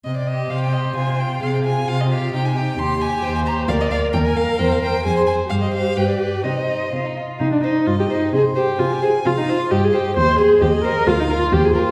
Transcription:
<<
  \new Staff \with { instrumentName = "Violin" } { \time 2/4 \key c \minor \tempo 4 = 132 ees''16 d''16 ees''8 f''16 g''16 ees''8 | aes''8 g''8 f''16 g''16 aes''8 | f''16 ees''16 f''8 g''16 aes''16 g''8 | c'''8 aes''8 g''16 aes''16 bes''8 |
f''16 ees''16 f''8 g''16 aes''16 f''8 | g''16 f''16 g''8 aes''16 c'''16 aes''8 | f''16 ees''16 f''8 g''16 d''8. | c''4 r4 |
r4 ees''4 | c''4 aes''4 | f''4 ees''4 | c''4 ees''4 |
f''4 c''4 | }
  \new Staff \with { instrumentName = "Violin" } { \time 2/4 \key c \minor r8 g'4 g'8 | f'8 f'4 f'8 | r8 g'4 g'8 | g'8 g'4 g'8 |
bes'8 bes'8 bes'8 bes'8 | c''8 c''8 c''8 c''8 | c''8 c''8 b'8 b'8 | ees'8 ees'8 f'16 ees'16 f'8 |
r8 c''8 r8 c''8 | r8 c''8 r8 c''8 | r8 c''8 r8 c''8 | r8 c''8 r8 c''8 |
r8 bes'8 r8 bes'8 | }
  \new Staff \with { instrumentName = "Viola" } { \time 2/4 \key c \minor r4 c''4~ | c''4 aes'4 | f'4 ees'4 | g'4 c''4 |
d''4 bes'4~ | bes'4 aes'4 | g'2 | ees''4. r8 |
ees'16 d'16 ees'8 f'16 g'16 ees'8 | aes'8 g'8 f'16 g'16 aes'8 | f'16 ees'16 f'8 g'16 aes'16 g'8 | c''8 aes'8 g'16 aes'16 bes'8 |
f'16 ees'16 f'8 g'16 aes'16 f'8 | }
  \new Staff \with { instrumentName = "Cello" } { \clef bass \time 2/4 \key c \minor c4 c4 | c4 c4 | c4 c4 | ees,4 ees,4 |
d,4 ees,4 | e,4 f,4 | g,4 g,4 | c4 c4 |
c4 g,4 | c4 c4 | c4 g,4 | ees,4 ees,4 |
d,4 ees,4 | }
>>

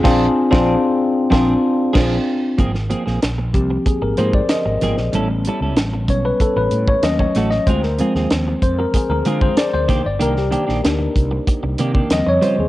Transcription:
<<
  \new Staff \with { instrumentName = "Tine electric piano" } { \time 4/4 \key aes \lydian \tempo 4 = 95 <c' d' f' aes'>8 r16 <c' d' f'>8 r8. <c' d' f'>8 r4. | r4. g'8 aes'16 bes'16 c''16 d''16 ees''4 | r4. cis''16 b'16 a'16 b'8 cis''16 dis''16 cis''8 dis''16 | c''16 bes'8 r8. c''16 bes'16 aes'16 bes'8 c''16 d''16 c''8 d''16 |
bes'16 g'8 r2 r16 ees''16 des''16 c''16 aes'16 | }
  \new Staff \with { instrumentName = "Tine electric piano" } { \time 4/4 \key aes \lydian r1 | r4. <f bes c'>4. r4 | <g b cis'>4. <g b cis'>8 r4 <fis a cis'>4 | r8 <f aes c'>4. r2 |
r4 <bes d' ees'>8 r4. <des f g c'>8 r8 | }
  \new Staff \with { instrumentName = "Clean electric guitar" } { \time 4/4 \key aes \lydian <f c' d' aes'>8 r16 <f c' d' aes'>8 r8. <f c' d' aes'>8 r8 <f c' d' aes'>8 r8 | <f bes c' aes'>16 r16 <f bes c' aes'>16 <f bes c' aes'>16 r4. <f bes c' aes'>16 r8. <f bes c' aes'>16 r16 | <g cis' e' a'>16 r16 <g cis' e' a'>16 <g cis' e' a'>16 r2 r8 <a cis' fis' a'>16 r16 | <aes c' f' aes'>16 r16 <aes c' f' aes'>16 <aes c' f' aes'>16 r4. <aes c' f' aes'>16 <aes c' f' aes'>16 r8 <ees bes d' g'>16 r16 |
<ees bes d' g'>16 r16 <ees bes d' g'>16 <ees bes d' g'>16 r4. <ees bes d' g'>16 <ees bes d' g'>16 r8 <g des' f' c''>16 r16 | }
  \new Staff \with { instrumentName = "Fretless electric bass" } { \clef bass \time 4/4 \key aes \lydian bes,,8 r16 bes,,8 r8. bes,,8 r8 bes,,8 r8 | aes,,8. bes,,16 bes,,8 c,8 r16 aes,,16 aes,8 r16 aes,,16 aes,,16 bes,,16 | a,,8. cis,16 a,,8 b,,8 r16 a,,16 a,8 dis,8 a,,8 | d,8. ees,16 ees,8 f,8 r16 d,16 d8 r16 d,16 c,16 g,,16 |
c,8. bes,,16 d,8 c,8 r16 c,16 c8 ees,16 f,16 r16 ees,16 | }
  \new DrumStaff \with { instrumentName = "Drums" } \drummode { \time 4/4 <cymc bd sn>8. <bd sn>16 r4 <bd sn>4 <cymc bd sn>4 | <hh bd>16 sn16 hh16 sn16 <hh sn>8 <hh bd>8 <hh bd>8 hh16 bd16 <hh sn>8 <hh sn>16 sn16 | hh8 hh8 <hh sn>8 <hh bd>8 <hh bd>8 hh16 bd16 <hh sn>16 bd16 <hh sn>16 sn16 | <hh bd>16 sn16 hh16 sn16 <hh sn>8 <hh bd>8 <hh bd>8 hh16 bd16 <hh sn>8 <hh bd sn>8 |
hh16 sn16 hh16 sn16 <hh sn>8 <hh bd>8 <hh bd>8 hh16 bd16 <hh sn>8 hh8 | }
>>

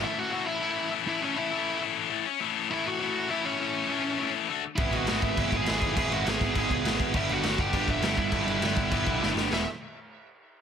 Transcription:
<<
  \new Staff \with { instrumentName = "Lead electric guitar" } { \time 4/4 \key a \lydian \tempo 4 = 203 <e' e''>8 <fis' fis''>8 <fis' fis''>8 <e' e''>4. r8 <e' e''>8 | <cis' cis''>8 <e' e''>4. r2 | r4 <e' e''>8 <fis' fis''>4. <e' e''>8 <cis' cis''>8~ | <cis' cis''>2~ <cis' cis''>8 r4. |
<e' e''>8 <fis' fis''>4 <e' e''>8~ \tuplet 3/2 { <e' e''>4 <gis' gis''>8~ } <gis' gis''>4 | <gis' gis''>8 <fis' fis''>8 <gis' gis''>4 <gis' gis''>4. r8 | <e' e''>8 <fis' fis''>4 <g' g''>4 <e' e''>4 <e' e''>8~ | <e' e''>2.~ <e' e''>8 r8 |
e''8 r2. r8 | }
  \new Staff \with { instrumentName = "Distorted electric guitar" } { \time 4/4 \key a \lydian <a, e a cis' e' a'>4 <a, e a cis' e' a'>4 <a, e a cis' e' a'>4 <a, e a cis' e' a'>4 | <a, e a cis' e' a'>4 <a, e a cis' e' a'>4 <a, e a cis' e' a'>4 <a, e a cis' e' a'>8 r8 | <a, e a cis' e' a'>4 <a, e a cis' e' a'>4 <a, e a cis' e' a'>4 <a, e a cis' e' a'>4 | <a, e a cis' e' a'>4 <a, e a cis' e' a'>4 <a, e a cis' e' a'>4 <d a d' a'>8 r8 |
<gis b e' gis'>4 <gis b e' gis'>4 <gis b e' gis'>4 <gis b e' gis'>4 | <gis b e' gis'>4 <gis b e' gis'>4 <gis b e' gis'>4 <gis b e' gis'>4 | <g b d' g'>4 <g b d' g'>4 <g b d' g'>4 <g b d' g'>4 | <g b d' g'>4 <g b d' g'>4 <g b d' g'>4 <g b d' g'>4 |
<e gis b e' gis'>8 r2. r8 | }
  \new Staff \with { instrumentName = "Overdriven electric guitar" } { \clef bass \time 4/4 \key a \lydian r1 | r1 | r1 | r1 |
<e, b, e>4 <e, b, e>4 <e, b, e>4 <e, b, e>4 | <e, b, e>4 <e, b, e>4 <e, b, e>4 <e, b, e>4 | <g, d g>4 <g, d g>4 <g, d g>4 <g, d g>4 | <g, d g>4 <g, d g>4 <g, d g>4 <g, d g>4 |
<e, b, e>8 r2. r8 | }
  \new Staff \with { instrumentName = "Picked electric bass" } { \clef bass \time 4/4 \key a \lydian r1 | r1 | r1 | r1 |
gis,,8 gis,,8 gis,,8 gis,,8 gis,,8 gis,,8 gis,,8 gis,,8 | gis,,8 gis,,8 gis,,8 gis,,8 gis,,8 cis,8 gis,,8 gis,,8 | g,,8 g,,8 g,,8 g,,8 g,,8 g,,8 g,,8 g,,8 | g,,8 g,,8 g,,8 g,,8 g,,8 b,,8 g,,8 g,,8 |
e,,8 r2. r8 | }
  \new DrumStaff \with { instrumentName = "Drums" } \drummode { \time 4/4 r4 r4 r4 r4 | r4 r4 r4 r4 | r4 r4 r4 r4 | r4 r4 r4 r4 |
<cymc bd>8 cymc8 <cymc sn>8 <cymc bd>8 <cymc bd>8 <cymc bd>8 <cymc sn>8 <cymc bd>8 | <cymc bd>8 cymc8 <cymc sn>8 <cymc bd>8 <cymc bd>8 <cymc bd>8 <cymc sn>8 <cymc bd>8 | <cymc bd>8 cymc8 <cymc sn>8 <cymc bd>8 <cymc bd>8 <cymc bd>8 <cymc sn>8 <cymc bd>8 | <cymc bd>8 cymc8 <cymc sn>8 <cymc bd>8 <cymc bd>8 <cymc bd>8 sn8 sn8 |
sn4 r4 r4 r4 | }
>>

